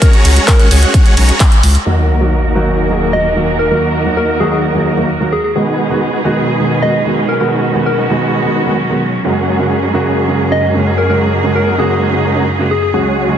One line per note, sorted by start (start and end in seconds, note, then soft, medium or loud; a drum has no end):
0.00 1.82 G#3 medium
0.00 0.57 G#3 medium
0.00 1.83 C#4 medium
0.00 0.57 C#4 medium
0.00 1.82 F#4 medium
0.00 0.57 F#4 medium
0.00 0.09 A#4 medium
0.00 0.57 C#5 medium
0.00 0.57 A#5 loud
0.00 kick loud
0.00 closed hi-hat loud
0.13 closed hi-hat soft
0.25 0.39 C#2 loud
0.25 open hi-hat loud
0.25 ride medium
0.36 closed hi-hat soft
0.48 0.68 A#4 loud
0.48 kick loud
0.48 clap loud
0.48 closed hi-hat medium
0.59 0.68 G#3 medium
0.59 0.68 C#4 medium
0.59 0.68 F#4 medium
0.59 0.68 C#5 medium
0.59 0.68 F#5 medium
0.59 closed hi-hat soft
0.71 0.85 C#2 loud
0.71 0.81 G#3 loud
0.71 0.81 C#4 medium
0.71 0.81 F#4 medium
0.71 0.81 C#5 medium
0.71 0.81 G#5 loud
0.71 open hi-hat loud
0.71 ride medium
0.82 1.14 G#3 medium
0.82 1.14 C#4 medium
0.82 1.14 F#4 medium
0.82 1.14 C#5 medium
0.82 1.14 F#5 medium
0.82 closed hi-hat soft
0.94 kick loud
0.94 closed hi-hat loud
1.06 closed hi-hat soft
1.17 1.31 B1 loud
1.17 1.39 G#3 medium
1.17 1.39 C#4 medium
1.17 1.39 F#4 medium
1.17 1.39 C#5 medium
1.17 1.39 A#5 loud
1.17 open hi-hat loud
1.17 ride medium
1.29 closed hi-hat soft
1.40 kick loud
1.40 clap loud
1.40 closed hi-hat loud
1.52 closed hi-hat soft
1.63 1.77 C#2 loud
1.63 open hi-hat loud
1.63 ride medium
1.75 closed hi-hat soft
1.86 5.52 D#2 medium
1.86 2.18 D#3 medium
1.86 5.52 D#3 medium
1.86 2.18 F#3 medium
1.86 2.41 A#3 medium
1.86 5.52 A#3 medium
1.86 2.18 A#3 medium
1.86 2.41 D#4 medium
1.86 2.41 F#4 medium
1.86 5.52 F#4 medium
1.86 2.18 F#4 medium
1.86 5.52 A#4 medium
1.86 2.41 D#5 medium
1.86 2.41 F#5 loud
1.86 sub drop medium
2.20 2.31 D#3 medium
2.20 2.31 F#3 medium
2.20 2.31 A#3 medium
2.20 2.32 F#4 medium
2.44 2.53 A#3 medium
2.44 2.53 D#4 medium
2.44 2.53 F#4 medium
2.44 2.53 D#5 medium
2.44 2.53 A#5 medium
2.55 2.87 D#3 medium
2.55 2.87 F#3 medium
2.55 2.65 A#3 medium
2.55 2.88 A#3 medium
2.55 2.65 D#4 medium
2.55 2.65 F#4 medium
2.55 2.88 F#4 medium
2.55 2.65 D#5 medium
2.55 2.65 F5 medium
2.67 3.68 A#3 medium
2.67 3.68 D#4 medium
2.67 3.68 F#4 medium
2.67 3.68 D#5 medium
2.67 3.68 G#5 medium
2.89 3.10 D#3 medium
2.89 3.10 F#3 medium
2.89 3.11 A#3 medium
2.89 3.11 G#4 medium
3.13 3.23 D#3 medium
3.13 3.24 F#3 medium
3.13 3.24 A#3 medium
3.13 3.24 F#4 medium
3.13 3.33 D#5 medium
3.36 3.47 D#3 medium
3.36 3.47 F#3 medium
3.36 3.47 A#3 medium
3.36 3.47 F#4 medium
3.59 3.67 A#4 medium
3.71 4.03 D#3 medium
3.71 4.03 F#3 medium
3.71 4.26 A#3 medium
3.71 4.03 A#3 medium
3.71 4.26 D#4 medium
3.71 4.26 F#4 medium
3.71 4.03 F#4 medium
3.71 3.78 A#4 medium
3.71 4.26 D#5 medium
3.71 4.26 A#5 medium
4.05 4.16 D#3 medium
4.05 4.16 F#3 medium
4.05 4.16 A#3 medium
4.05 4.16 F#4 medium
4.17 4.37 A#4 medium
4.29 4.38 A#3 medium
4.29 4.37 D#4 medium
4.29 4.37 F#4 medium
4.29 4.37 D#5 medium
4.29 4.38 F#5 medium
4.40 4.72 D#3 medium
4.40 4.72 F#3 medium
4.40 4.50 A#3 medium
4.40 4.72 A#3 medium
4.40 4.50 D#4 medium
4.40 4.50 F#4 medium
4.40 4.72 F#4 medium
4.40 4.48 G#4 medium
4.40 4.50 D#5 medium
4.40 4.50 G#5 loud
4.52 4.84 A#3 medium
4.52 4.84 D#4 medium
4.52 4.84 F#4 medium
4.52 4.59 G#4 medium
4.52 4.84 D#5 medium
4.52 4.84 F#5 medium
4.74 4.95 D#3 medium
4.74 4.95 F#3 medium
4.74 4.95 A#3 medium
4.74 4.95 G#4 medium
4.86 5.08 A#3 medium
4.86 5.08 D#4 medium
4.86 5.08 F#4 medium
4.86 5.08 D#5 medium
4.86 5.08 A#5 medium
4.97 5.08 D#3 medium
4.97 5.08 F#3 medium
4.97 5.09 A#3 medium
4.97 5.09 F#4 medium
5.20 5.31 D#3 medium
5.20 5.31 F#3 medium
5.20 5.32 A#3 medium
5.20 5.32 F#4 medium
5.32 5.42 G#4 medium
5.44 5.51 G#4 medium
5.55 9.21 B2 medium
5.55 5.87 D#3 medium
5.55 12.90 F#3 medium
5.55 5.87 G#3 medium
5.55 6.11 G#3 medium
5.55 5.88 B3 medium
5.55 11.05 C#4 medium
5.55 9.21 D#4 medium
5.55 6.11 D#4 medium
5.55 6.11 F#4 medium
5.55 5.88 F#4 medium
5.55 7.38 G#4 medium
5.55 5.63 G#4 medium
5.55 6.10 B4 medium
5.55 6.11 F#5 loud
5.90 6.00 D#3 medium
5.90 6.01 G#3 medium
5.90 6.01 B3 medium
5.90 6.01 F#4 medium
6.13 6.22 G#3 medium
6.13 6.22 D#4 medium
6.13 6.22 F#4 medium
6.13 6.22 B4 medium
6.13 6.22 F#5 medium
6.24 6.56 D#3 medium
6.24 6.57 G#3 medium
6.24 6.35 G#3 medium
6.24 6.57 B3 medium
6.24 6.35 D#4 medium
6.24 6.35 F#4 medium
6.24 6.57 F#4 medium
6.24 6.35 B4 medium
6.24 6.35 D#5 medium
6.36 7.37 G#3 medium
6.36 7.37 D#4 medium
6.36 7.37 F#4 medium
6.36 7.37 B4 medium
6.36 7.37 G#5 medium
6.59 6.79 D#3 medium
6.59 6.80 G#3 medium
6.59 6.80 B3 medium
6.59 6.80 G#4 medium
6.82 6.93 D#3 medium
6.82 6.93 G#3 medium
6.82 6.93 B3 medium
6.82 6.93 F#4 medium
6.82 7.03 D#5 medium
7.05 7.16 D#3 medium
7.05 7.16 G#3 medium
7.05 7.16 B3 medium
7.05 7.16 F#4 medium
7.29 7.36 A#4 medium
7.40 7.72 D#3 medium
7.40 7.72 G#3 medium
7.40 7.95 G#3 medium
7.40 7.72 B3 medium
7.40 7.95 D#4 medium
7.40 9.23 F#4 medium
7.40 7.95 F#4 medium
7.40 7.72 F#4 medium
7.40 7.48 A#4 medium
7.40 7.95 B4 medium
7.40 7.95 F#5 medium
7.74 7.85 D#3 medium
7.74 7.85 G#3 medium
7.74 7.85 B3 medium
7.74 7.86 F#4 medium
7.86 8.06 A#4 medium
7.98 8.07 G#3 medium
7.98 8.07 D#4 medium
7.98 8.07 F#4 medium
7.98 8.07 B4 medium
7.98 8.07 F#5 medium
8.09 8.41 D#3 medium
8.09 8.41 G#3 medium
8.09 8.19 G#3 medium
8.09 8.41 B3 medium
8.09 8.19 D#4 medium
8.09 8.19 F#4 medium
8.09 8.42 F#4 medium
8.09 8.19 B4 medium
8.09 8.19 G#5 loud
8.21 8.53 G#3 medium
8.21 8.53 D#4 medium
8.21 8.53 F#4 medium
8.21 8.53 B4 medium
8.21 8.53 F#5 medium
8.43 8.64 D#3 medium
8.43 8.64 G#3 medium
8.43 8.64 B3 medium
8.43 8.65 G#4 medium
8.55 8.77 G#3 medium
8.55 8.77 D#4 medium
8.55 8.77 F#4 medium
8.55 8.77 B4 medium
8.55 8.77 F#5 medium
8.66 8.77 D#3 medium
8.66 8.77 G#3 medium
8.66 8.78 B3 medium
8.66 8.78 F#4 medium
8.90 9.00 D#3 medium
8.90 9.01 G#3 medium
8.90 9.01 B3 medium
8.90 9.01 F#4 medium
9.24 12.90 F#2 medium
9.24 9.56 C#3 medium
9.24 9.57 G#3 medium
9.24 9.80 G#3 medium
9.24 12.90 A#3 medium
9.24 9.57 A#3 medium
9.24 9.80 C#4 medium
9.24 9.80 F#4 medium
9.24 9.57 F#4 medium
9.24 13.38 G#4 medium
9.24 9.80 A#4 medium
9.24 9.80 F#5 loud
9.59 9.70 C#3 medium
9.59 9.70 G#3 medium
9.59 9.70 A#3 medium
9.59 9.70 F#4 medium
9.83 9.91 G#3 medium
9.83 9.91 C#4 medium
9.83 9.91 F#4 medium
9.83 9.91 A#4 medium
9.83 9.91 A#5 medium
9.94 10.26 C#3 medium
9.94 10.26 G#3 medium
9.94 10.04 G#3 medium
9.94 10.26 A#3 medium
9.94 10.04 C#4 medium
9.94 10.04 F#4 medium
9.94 10.26 F#4 loud
9.94 10.04 A#4 medium
9.94 10.04 D#5 medium
10.06 11.07 G#3 medium
10.06 11.07 C#4 medium
10.06 11.07 F#4 medium
10.06 11.07 A#4 medium
10.06 11.07 G#5 medium
10.28 10.49 C#3 medium
10.28 10.49 G#3 medium
10.28 10.49 A#3 medium
10.28 10.49 G#4 medium
10.51 10.62 C#3 medium
10.51 10.62 G#3 medium
10.51 10.62 A#3 medium
10.51 10.63 F#4 medium
10.51 10.72 D#5 medium
10.74 10.85 C#3 medium
10.74 10.85 G#3 medium
10.74 10.85 A#3 medium
10.74 10.86 F#4 medium
10.98 11.05 A#4 medium
11.09 11.41 C#3 medium
11.09 11.41 G#3 medium
11.09 11.64 G#3 medium
11.09 11.41 A#3 medium
11.09 11.64 C#4 medium
11.09 12.92 D#4 medium
11.09 11.64 F#4 medium
11.09 11.42 F#4 medium
11.09 11.64 A#4 medium
11.09 11.17 A#4 medium
11.09 11.64 A#5 medium
11.43 11.54 C#3 medium
11.43 11.54 G#3 medium
11.43 11.55 A#3 medium
11.43 11.55 F#4 medium
11.56 11.76 A#4 medium
11.67 11.76 G#3 medium
11.67 11.76 C#4 medium
11.67 11.76 F#4 medium
11.67 11.76 A#4 medium
11.67 11.76 F#5 medium
11.78 12.10 C#3 medium
11.78 12.10 G#3 medium
11.78 11.88 G#3 medium
11.78 12.11 A#3 medium
11.78 11.88 C#4 medium
11.78 11.88 F#4 medium
11.78 12.11 F#4 loud
11.78 11.86 G#4 medium
11.78 11.88 A#4 medium
11.78 11.88 G#5 loud
11.90 12.22 G#3 medium
11.90 12.22 C#4 medium
11.90 12.22 F#4 medium
11.90 11.98 G#4 medium
11.90 12.22 A#4 medium
11.90 12.22 F#5 medium
12.13 12.33 C#3 medium
12.13 12.34 G#3 medium
12.13 12.34 A#3 medium
12.13 12.34 G#4 medium
12.25 12.47 G#3 medium
12.25 12.47 C#4 medium
12.25 12.47 F#4 medium
12.25 12.47 A#4 medium
12.25 12.47 A#5 medium
12.36 12.47 C#3 medium
12.36 12.47 G#3 medium
12.36 12.47 A#3 medium
12.36 12.47 F#4 medium
12.59 12.70 C#3 medium
12.59 12.70 G#3 medium
12.59 12.70 A#3 medium
12.59 12.70 F#4 medium
12.71 12.80 G#4 medium
12.83 12.90 G#4 medium
12.93 13.38 C#2 medium
12.93 13.26 C#3 medium
12.93 13.38 C#3 medium
12.93 13.26 F#3 medium
12.93 13.38 G#3 medium
12.93 13.26 G#3 medium
12.93 13.38 C#4 medium
12.93 13.38 F#4 medium
12.93 13.26 F#4 medium
12.93 13.01 G#4 medium
12.93 13.38 C#5 medium
12.93 13.38 F#5 loud
13.28 13.38 C#3 medium
13.28 13.38 F#3 medium
13.28 13.38 G#3 medium
13.28 13.38 F#4 medium